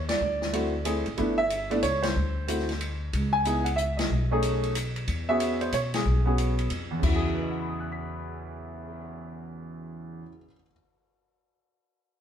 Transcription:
0.00 0.18 D#2 medium
0.09 1.02 D5 loud
0.09 snare medium
0.09 ride medium
0.21 1.02 D2 medium
0.42 snare medium
0.53 0.72 A3 medium
0.53 0.72 C4 medium
0.53 0.72 E4 medium
0.53 0.72 F#4 medium
0.53 ride medium
0.85 1.04 A3 medium
0.85 1.04 C4 medium
0.85 1.04 E4 medium
0.85 1.04 G#4 medium
0.85 hi-hat pedal soft
0.85 ride medium
1.06 1.17 G#1 medium
1.06 ride soft
1.17 1.79 G1 medium
1.17 1.36 A3 medium
1.17 1.37 B3 medium
1.17 1.37 D4 medium
1.17 1.37 E4 medium
1.17 kick soft
1.17 ride medium
1.38 1.72 E5 loud
1.50 hi-hat pedal medium
1.50 ride medium
1.70 1.81 A3 medium
1.70 1.82 B3 medium
1.70 1.82 D4 medium
1.70 1.82 E4 medium
1.70 1.76 D5 medium
1.70 ride soft
1.83 2.13 C#2 medium
1.83 2.04 C#5 medium
1.83 hi-hat pedal medium
1.83 ride medium
2.03 2.97 C5 medium
2.03 snare medium
2.03 ride medium
2.16 3.09 D2 medium
2.48 2.66 A3 medium
2.48 2.67 C4 soft
2.48 2.67 E4 medium
2.48 2.67 F#4 medium
2.48 hi-hat pedal medium
2.48 ride medium
2.59 snare soft
2.69 snare soft
2.69 ride soft
2.81 ride medium
3.13 4.07 C#2 medium
3.13 kick soft
3.13 ride medium
3.33 3.67 G#5 loud
3.45 3.64 B3 medium
3.45 3.64 D#4 medium
3.45 3.65 E4 medium
3.45 3.65 G#4 medium
3.45 hi-hat pedal medium
3.45 ride medium
3.64 3.76 F#5 medium
3.64 ride medium
3.76 3.96 E5 medium
3.76 hi-hat pedal medium
3.97 4.91 D#5 medium
3.97 snare medium
3.97 ride medium
4.10 5.04 B1 medium
4.31 4.73 A3 medium
4.31 4.73 C#4 medium
4.31 4.73 D#4 medium
4.31 4.74 G#4 medium
4.43 hi-hat pedal medium
4.43 ride medium
4.64 ride soft
4.75 hi-hat pedal medium
4.75 ride medium
4.96 ride soft
5.08 5.69 E2 medium
5.08 kick soft
5.08 ride medium
5.29 5.70 B3 medium
5.29 5.71 C#4 medium
5.29 5.71 F#4 medium
5.29 5.71 G#4 medium
5.29 5.59 E5 loud
5.40 hi-hat pedal soft
5.40 ride medium
5.61 5.72 C5 medium
5.61 ride soft
5.72 6.03 B2 medium
5.72 5.79 C#5 medium
5.72 hi-hat pedal medium
5.72 ride medium
5.94 6.26 G#4 medium
5.94 snare medium
5.94 ride medium
6.05 6.66 B1 medium
6.25 6.68 B3 medium
6.25 6.68 C#4 medium
6.25 6.68 F#4 medium
6.25 6.68 G#4 medium
6.38 hi-hat pedal medium
6.38 ride medium
6.59 ride soft
6.70 7.00 F2 medium
6.70 ride medium
6.91 10.21 E2 medium
6.99 10.28 E2 medium
6.99 10.29 C#3 medium
6.99 kick medium
6.99 crash medium
7.04 10.29 E4 medium
7.04 10.37 F#4 medium
7.16 10.45 G#4 medium
7.24 cymbal swell soft
7.35 10.43 B4 soft
7.43 10.47 D#5 soft
7.51 10.51 F#5 soft
7.60 10.56 B5 soft
7.69 10.60 D#6 soft
7.80 10.66 F#6 soft
7.92 10.72 B6 soft

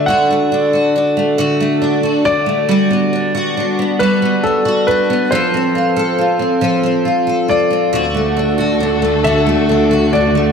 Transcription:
0.00 0.29 A3 soft
0.00 0.51 D4 soft
0.06 1.38 D3 medium
0.06 0.73 F#4 medium
0.06 2.32 F#5 medium
0.31 1.16 A3 soft
0.52 0.95 D4 soft
0.73 1.38 F#4 medium
0.96 1.81 D4 soft
1.17 1.59 A3 soft
1.38 4.88 D3 medium
1.38 2.03 F#4 medium
1.60 2.45 A3 soft
1.82 2.25 D4 soft
2.03 2.69 F#4 medium
2.25 3.12 D4 soft
2.25 3.96 D5 medium
2.46 2.77 A3 soft
2.69 3.99 G3 medium
2.69 3.33 F#4 medium
2.91 3.78 B3 soft
3.13 3.56 D4 soft
3.35 3.99 F#4 medium
3.57 4.42 D4 soft
3.79 4.21 B3 soft
3.99 5.31 G3 medium
3.99 4.64 F#4 medium
3.99 4.40 B4 medium
4.22 5.09 B3 soft
4.43 4.87 D4 soft
4.43 4.89 A4 medium
4.65 5.31 F#4 soft
4.87 5.40 D4 soft
4.87 5.32 B4 medium
5.10 5.40 B3 soft
5.31 6.60 F3 medium
5.31 5.96 A4 soft
5.31 7.56 C5 medium
5.54 6.38 C4 soft
5.75 6.17 F4 soft
5.96 6.62 A4 medium
6.19 7.04 F4 soft
6.39 6.82 C4 soft
6.61 8.02 F3 medium
6.61 7.26 A4 soft
6.83 7.69 C4 soft
7.05 7.47 F4 soft
7.27 7.93 A4 soft
7.48 8.02 F4 soft
7.48 9.30 D5 medium
7.71 8.02 C4 soft
7.92 10.52 D2 medium
7.92 10.52 D3 medium
7.92 9.24 D3 medium
7.92 10.52 A3 medium
7.92 10.52 F#4 medium
7.92 8.58 F#4 medium
7.92 10.52 A4 medium
8.14 9.01 A3 soft
8.37 8.80 D4 soft
8.58 9.25 F#4 medium
8.80 9.69 D4 soft
9.02 9.45 A3 soft
9.24 10.52 D3 medium
9.24 9.90 F#4 medium
9.24 10.15 E5 medium
9.47 10.34 A3 soft
9.69 10.13 D4 soft
9.91 10.52 F#4 soft
10.13 10.52 D4 soft
10.13 10.52 D5 medium
10.35 10.52 A3 soft

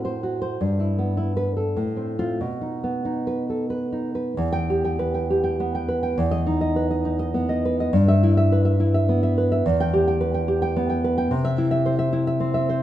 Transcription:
0.00 0.57 A2 medium
0.00 0.14 C4 medium
0.00 0.22 F#4 medium
0.05 0.40 C5 medium
0.23 0.61 F#4 medium
0.42 0.61 C5 medium
0.61 1.74 G2 medium
0.80 1.16 E4 medium
0.99 1.77 B3 medium
1.17 1.36 E4 medium
1.37 1.56 B4 medium
1.57 1.77 A4 medium
1.76 2.39 A2 medium
1.97 2.18 C4 medium
2.19 2.39 C4 medium
2.19 2.39 F4 medium
2.41 4.34 B2 medium
2.61 3.04 D#4 medium
2.84 3.82 B3 medium
3.05 3.91 D#4 medium
3.27 3.49 B4 medium
3.50 3.70 A4 soft
3.70 4.14 B4 medium
3.92 4.37 D#4 medium
4.15 4.38 B4 medium
4.37 6.14 E2 medium
4.53 4.79 G5 medium
4.70 5.29 G4 medium
4.84 5.13 G5 medium
4.99 5.87 B4 medium
5.14 5.43 G5 medium
5.30 6.18 G4 medium
5.44 5.74 G5 medium
5.60 6.18 B3 medium
5.75 6.02 G5 medium
5.88 6.18 B4 medium
6.03 6.18 G5 medium
6.18 7.90 E2 medium
6.31 6.55 D#5 medium
6.47 7.04 D#4 medium
6.61 6.89 D#5 medium
6.76 7.64 B4 medium
6.91 7.18 D#5 medium
7.05 7.94 D#4 medium
7.19 7.48 D#5 medium
7.34 7.94 B3 medium
7.49 7.79 D#5 medium
7.65 7.94 B4 medium
7.80 7.94 D#5 medium
7.93 9.60 G2 medium
8.08 8.31 E5 medium
8.23 8.79 E4 medium
8.37 8.64 E5 medium
8.52 9.37 B4 medium
8.65 8.93 E5 medium
8.80 9.65 E4 medium
8.94 9.22 E5 medium
9.09 9.65 B3 medium
9.23 9.51 E5 medium
9.38 9.65 B4 medium
9.52 9.65 E5 medium
9.66 11.28 E2 loud
9.80 10.02 G5 loud
9.94 10.47 G4 medium
10.08 10.33 G5 medium
10.21 11.03 B4 medium
10.34 10.61 G5 medium
10.48 11.32 G4 medium
10.62 10.88 G5 medium
10.76 11.32 B3 medium
10.90 11.16 G5 medium
11.04 11.32 B4 medium
11.18 11.31 G5 medium
11.31 12.83 C3 loud
11.45 11.67 E5 loud
11.58 12.11 E4 medium
11.71 11.98 E5 medium
11.86 12.68 C5 medium
11.99 12.26 E5 medium
12.13 12.83 E4 medium
12.27 12.53 E5 medium
12.40 12.83 C4 medium
12.54 12.83 E5 medium
12.69 12.83 C5 medium

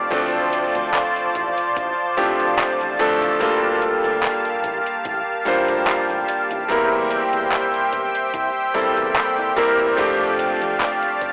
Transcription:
0.00 0.11 F3 medium
0.00 0.11 A3 medium
0.00 0.12 C4 medium
0.00 0.13 D4 medium
0.00 0.14 C5 medium
0.00 3.37 D5 medium
0.00 6.65 A5 medium
0.11 0.65 D2 medium
0.11 2.12 F3 medium
0.11 2.13 A3 medium
0.11 2.13 C4 medium
0.11 2.13 D4 medium
0.11 3.38 F4 medium
0.11 2.14 A4 medium
0.11 3.38 C5 medium
0.11 kick loud
0.11 closed hi-hat medium
0.53 closed hi-hat medium
0.75 0.89 D2 medium
0.75 closed hi-hat medium
0.94 clap loud
0.94 closed hi-hat medium
1.16 closed hi-hat soft
1.35 1.51 A1 medium
1.35 kick medium
1.35 closed hi-hat medium
1.58 closed hi-hat medium
1.76 1.92 A1 medium
1.76 kick loud
1.76 closed hi-hat medium
2.17 2.33 A1 medium
2.17 2.95 F3 medium
2.17 2.95 A3 medium
2.17 2.95 C4 medium
2.17 2.95 D4 medium
2.17 2.95 G4 medium
2.17 kick medium
2.17 closed hi-hat medium
2.40 2.53 D2 medium
2.40 closed hi-hat soft
2.59 clap loud
2.59 closed hi-hat medium
2.81 2.94 A1 medium
2.81 closed hi-hat soft
2.99 3.36 F3 medium
2.99 3.36 A3 medium
2.99 3.36 C4 medium
2.99 3.37 D4 medium
2.99 3.37 A4 loud
2.99 kick loud
2.99 closed hi-hat medium
3.22 3.35 A1 medium
3.22 closed hi-hat medium
3.40 3.93 D2 medium
3.40 5.41 G3 medium
3.40 5.41 A#3 medium
3.40 6.66 A#3 medium
3.40 5.42 D4 medium
3.40 5.42 F4 medium
3.40 11.33 G4 medium
3.40 5.43 A4 loud
3.40 6.66 F5 medium
3.40 kick loud
3.40 closed hi-hat medium
3.82 closed hi-hat medium
4.04 4.17 D2 medium
4.04 closed hi-hat medium
4.23 clap loud
4.23 closed hi-hat medium
4.45 closed hi-hat soft
4.64 4.80 A1 medium
4.64 kick medium
4.64 closed hi-hat medium
4.87 closed hi-hat medium
5.05 5.21 A1 medium
5.05 kick loud
5.05 closed hi-hat medium
5.45 5.62 A1 medium
5.45 6.64 G3 medium
5.45 6.65 A#3 medium
5.45 6.65 D4 medium
5.45 6.65 F4 medium
5.45 6.66 C5 medium
5.45 closed hi-hat medium
5.68 5.82 D2 medium
5.68 closed hi-hat medium
5.87 clap loud
5.87 closed hi-hat medium
6.10 6.23 A1 medium
6.10 closed hi-hat soft
6.28 closed hi-hat medium
6.51 6.64 A1 medium
6.51 closed hi-hat medium
6.68 7.22 E2 medium
6.68 8.70 G3 medium
6.68 8.70 A#3 medium
6.68 8.71 C4 medium
6.68 8.71 E4 medium
6.68 8.71 A#4 medium
6.68 9.95 C5 medium
6.68 9.95 E5 medium
6.68 9.95 G5 medium
6.68 kick loud
6.68 closed hi-hat medium
7.11 closed hi-hat medium
7.33 7.46 E2 medium
7.33 closed hi-hat soft
7.52 clap loud
7.52 closed hi-hat medium
7.74 closed hi-hat soft
7.93 8.08 E1 medium
7.93 kick medium
7.93 closed hi-hat medium
8.15 closed hi-hat soft
8.34 8.49 C2 medium
8.34 kick loud
8.34 closed hi-hat medium
8.74 8.91 E1 medium
8.74 9.52 G3 medium
8.74 9.52 A#3 medium
8.74 9.53 C4 medium
8.74 9.53 E4 medium
8.74 9.53 A4 medium
8.74 kick medium
8.74 closed hi-hat medium
8.97 9.10 E2 medium
8.97 closed hi-hat soft
9.16 clap loud
9.16 closed hi-hat medium
9.38 9.51 C2 medium
9.38 closed hi-hat soft
9.56 9.93 G3 medium
9.56 9.94 A#3 medium
9.56 9.94 C4 medium
9.56 9.94 E4 medium
9.56 9.94 A#4 loud
9.56 kick loud
9.56 closed hi-hat medium
9.79 9.93 E1 medium
9.79 closed hi-hat soft
9.96 10.51 F2 medium
9.96 11.33 F3 medium
9.96 11.33 A3 medium
9.96 11.33 C4 medium
9.96 11.33 D4 medium
9.96 11.33 G4 loud
9.96 11.33 D5 medium
9.96 11.33 F5 medium
9.96 11.33 A5 medium
9.96 kick loud
9.96 closed hi-hat medium
10.39 closed hi-hat medium
10.62 10.75 F2 medium
10.62 closed hi-hat soft
10.80 clap loud
10.80 closed hi-hat medium
11.03 closed hi-hat soft
11.21 11.33 F1 medium
11.21 kick medium
11.21 closed hi-hat medium

